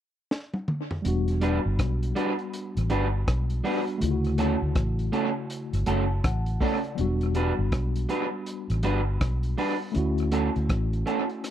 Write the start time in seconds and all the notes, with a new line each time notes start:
0.31 snare
0.54 high tom
0.68 mid tom
0.91 floor tom
1.02 E1 G3 B3 D4, closed hi-hat
1.08 F#4
1.28 closed hi-hat
1.41 G3 D4 F#4 B4, closed hi-hat
1.66 G1
1.79 B1, kick, cross-stick, closed hi-hat
2.03 closed hi-hat
2.15 G3 D4 F#4 B4, closed hi-hat
2.39 closed hi-hat
2.53 closed hi-hat
2.77 A1, closed hi-hat
2.90 G1 G3 D4 F#4 B4, closed hi-hat
3.28 B1, kick, cross-stick, closed hi-hat
3.50 closed hi-hat
3.63 G3 B3 D4 F#4 B4, open hi-hat
3.87 closed hi-hat
3.98 C#3 A3, closed hi-hat
4.02 D2 E4 F4
4.11 F#4
4.24 closed hi-hat
4.38 A3 C#4 F#4 A4, closed hi-hat
4.62 D2
4.75 A1, kick, cross-stick, closed hi-hat
4.99 closed hi-hat
5.12 A3 C#4 F#4 A4, closed hi-hat
5.50 closed hi-hat
5.73 G1, closed hi-hat
5.86 F#1 A3 C#4 F#4 A4 A5, closed hi-hat
6.24 A1 F#5, kick, cross-stick, closed hi-hat
6.46 closed hi-hat
6.61 A3 C#4 F#4 A4 D5, kick, open hi-hat
6.84 closed hi-hat
6.95 E1 F#3 B3, closed hi-hat
6.99 G3 D4 F#4
7.21 closed hi-hat
7.35 G3 D4 F#4 B4, closed hi-hat
7.59 G1
7.72 B1, kick, cross-stick, closed hi-hat
7.96 closed hi-hat
8.09 G3 D4 F#4 B4, closed hi-hat
8.46 closed hi-hat
8.70 A1, closed hi-hat
8.83 G1 G3 D4 F#4 B4, closed hi-hat
9.21 B1, kick, cross-stick, closed hi-hat
9.43 closed hi-hat
9.58 G3 D4 F#4 B4, open hi-hat
9.92 A3 C#4 E4, closed hi-hat
9.96 D2 F#4
10.18 closed hi-hat
10.32 A3 C#4 F#4 A4, closed hi-hat
10.56 D2, closed hi-hat
10.69 A1, kick, cross-stick, closed hi-hat
10.93 closed hi-hat
11.06 A3 C#4 F#4 A4, closed hi-hat
11.30 closed hi-hat
11.44 cross-stick, closed hi-hat